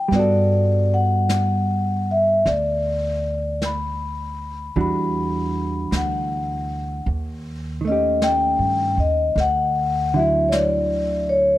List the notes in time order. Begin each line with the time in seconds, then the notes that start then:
Already playing: F3 D#4 G4 G5
0.08 G2 G3, brush sweep, snare
0.13 B3 F#4 D5
0.20 A4
0.94 F#5
1.29 brush sweep, snare, hi-hat pedal
2.11 E5
2.46 D2 D5, brush sweep, snare
3.62 B5, brush sweep, snare, hi-hat pedal
4.76 E2 E3 G3 D4 F#4, brush sweep
4.81 B5
5.91 D2, brush sweep, snare, hi-hat pedal
5.97 F#5
7.06 D#2, brush sweep
7.81 D#3 A3
7.88 C#4 D#5
7.92 G4
8.22 G5, brush sweep, snare, hi-hat pedal
8.59 G2
8.97 D#2 D#5
9.36 D2, brush sweep, snare
9.40 F#5
10.14 D3 F#3 E5
10.19 E4
10.48 C#5 D5, brush sweep, snare, hi-hat pedal
11.29 C#5